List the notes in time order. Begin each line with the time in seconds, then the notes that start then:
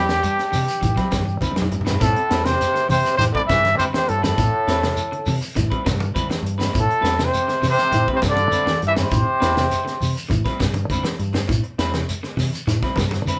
Already playing: E2 G2 F#3 G3 G4
0.08 muted clean electric guitar stroke, snare, high conga, shekere
0.23 G3, closed hi-hat, shekere
0.36 muted clean electric guitar stroke, snare, closed hi-hat
0.52 C3 E3, snare, open hi-hat, high conga, shekere
0.67 muted clean electric guitar stroke, closed hi-hat, shekere
0.81 A2 E3, muted clean electric guitar stroke, kick, closed hi-hat, high conga, low conga, shekere
0.96 F#3 G3 C4 E4 B4, kick, snare, closed hi-hat
1.12 G2, muted clean electric guitar stroke, kick, snare, closed hi-hat, high conga, shekere
1.21 high conga
1.25 E3, shekere
1.41 D3 G3 C4 E4 B4, kick, closed hi-hat, low conga, shekere
1.51 low conga
1.56 F#3, muted clean electric guitar stroke, muted fingered electric bass stroke, snare, closed hi-hat
1.62 low conga
1.71 G2, muted clean electric guitar stroke, closed hi-hat, low conga, shekere
1.81 low conga
1.85 E3 C4 E4 B4, snare, closed hi-hat, shekere
1.91 low conga
2.00 A2 B2 G3 C4 E4 A4, muted clean electric guitar stroke, kick, closed hi-hat, low conga, shekere
2.15 muted clean electric guitar stroke, closed hi-hat
2.29 E2 G3 C4 E4 B4, snare, closed hi-hat, shekere
2.45 C3 C5, muted clean electric guitar stroke, snare, closed hi-hat, high conga, shekere
2.61 snare, closed hi-hat, shekere
2.74 D3, muted clean electric guitar stroke, snare, closed hi-hat
2.88 C3 E3 C5, open hi-hat, high conga, shekere
3.05 muted clean electric guitar stroke, snare, closed hi-hat, shekere
3.17 A2 C3 D3 C5, muted clean electric guitar stroke, snare, closed hi-hat, high conga, low conga, shekere
3.31 D3 G3 C4 E4 B4, kick
3.35 D5
3.47 G2 C3 E3 E5, muted clean electric guitar stroke, kick, snare, closed hi-hat, high conga, shekere
3.64 D3, snare, closed hi-hat, high conga, shekere
3.76 C3 D3 G3 C4 E4 B4 C5, closed hi-hat, shekere
3.93 C3 C5, muted fingered electric bass stroke, muted clean electric guitar stroke, snare, high conga
4.07 G2 A2 A4, muted clean electric guitar stroke, closed hi-hat, shekere
4.22 A2 D3 C4 E4 A4 B4, snare, closed hi-hat, high conga, low conga, shekere
4.38 A2 B2, kick, closed hi-hat, low conga, shekere
4.53 muted clean electric guitar stroke
4.67 E2 C4 E4 B4, snare, closed hi-hat, shekere
4.82 C3, muted clean electric guitar stroke, snare, closed hi-hat, high conga, shekere
4.97 closed hi-hat, shekere
5.12 D3, muted clean electric guitar stroke, closed hi-hat
5.26 C3 E3, open hi-hat, high conga, shekere
5.41 muted clean electric guitar stroke, shekere
5.55 A2 D3, muted clean electric guitar stroke, kick, snare, closed hi-hat, high conga, low conga, shekere
5.70 G3 C4 E4 B4, kick, closed hi-hat
5.85 G2 C3, muted clean electric guitar stroke, kick, snare, closed hi-hat, high conga, shekere
6.00 D3, closed hi-hat, high conga, shekere
6.14 D3 G3 C4 E4 B4, kick, closed hi-hat, shekere
6.28 E3, muted clean electric guitar stroke, muted fingered electric bass stroke, snare, closed hi-hat, high conga
6.42 G2, muted clean electric guitar stroke, closed hi-hat
6.47 shekere
6.58 D3 C4 E4 B4, snare, high conga, shekere
6.73 A2 B2, kick, closed hi-hat, low conga, shekere
6.80 A4
6.88 muted clean electric guitar stroke, closed hi-hat
7.01 E2 G3 C4 E4 B4, snare, closed hi-hat
7.05 shekere
7.18 C3, muted clean electric guitar stroke, snare, closed hi-hat, high conga, shekere
7.23 C3 C5
7.34 closed hi-hat, shekere
7.47 D3, muted clean electric guitar stroke, snare, closed hi-hat
7.62 C3 E3, snare, open hi-hat, high conga, shekere
7.69 C5
7.78 snare, closed hi-hat, shekere
7.91 A2 D3, closed hi-hat, low conga, shekere
8.07 G3 C4 E4 B4, kick
8.12 C3 C5
8.22 G2 C3, muted clean electric guitar stroke, kick, snare, closed hi-hat, high conga, shekere
8.27 D3 D5
8.36 D3, closed hi-hat, high conga, shekere
8.51 D3 G3 C4 E4 B4, closed hi-hat, shekere
8.66 E3, muted clean electric guitar stroke, muted fingered electric bass stroke, snare, high conga
8.81 G2, muted clean electric guitar stroke, closed hi-hat, shekere
8.86 E3 E5
8.95 D3 C4 E4 B4, snare, closed hi-hat, high conga, low conga, shekere
9.00 C3 C5
9.11 A2 B2, kick, closed hi-hat, low conga, shekere
9.27 muted clean electric guitar stroke
9.40 E2 C4 E4 B4, snare, closed hi-hat, shekere
9.56 C3, muted clean electric guitar stroke, snare, closed hi-hat, high conga, shekere
9.71 snare, closed hi-hat, shekere
9.85 D3, muted clean electric guitar stroke, snare, closed hi-hat
10.01 C3, open hi-hat, high conga, shekere
10.15 muted clean electric guitar stroke, shekere
10.29 A2 D3, muted clean electric guitar stroke, kick, closed hi-hat, high conga, low conga, shekere
10.45 G3 C4 E4 B4, kick, snare, closed hi-hat
10.59 G2 C3, muted clean electric guitar stroke, kick, snare, closed hi-hat, high conga, shekere
10.74 D3, closed hi-hat, high conga, shekere
10.90 D3 G3 C4 E4 B4, kick, closed hi-hat, shekere
11.03 E3, muted fingered electric bass stroke, muted clean electric guitar stroke, snare, closed hi-hat, high conga
11.19 G2, muted clean electric guitar stroke, closed hi-hat, shekere
11.33 D3 C4, muted clean electric guitar stroke, snare, low conga, shekere
11.48 A2 B2, kick, closed hi-hat, low conga, shekere
11.64 muted clean electric guitar stroke, closed hi-hat
11.78 E2 G3 C4 E4 B4, snare, closed hi-hat, shekere
11.93 C3, muted clean electric guitar stroke, snare, closed hi-hat, high conga, shekere
12.09 closed hi-hat, shekere
12.23 D3, muted clean electric guitar stroke, snare, closed hi-hat
12.37 C3 E3, snare, open hi-hat, high conga, shekere
12.53 muted clean electric guitar stroke, closed hi-hat, shekere
12.67 A2 D3, muted clean electric guitar stroke, snare, closed hi-hat, low conga, shekere
12.83 G3 C4 E4 B4, kick, snare
12.96 G2 C3, muted clean electric guitar stroke, kick, snare, closed hi-hat, high conga, shekere
13.11 D3, snare, closed hi-hat, high conga, shekere
13.25 D3 G3 C4 E4 B4, closed hi-hat, shekere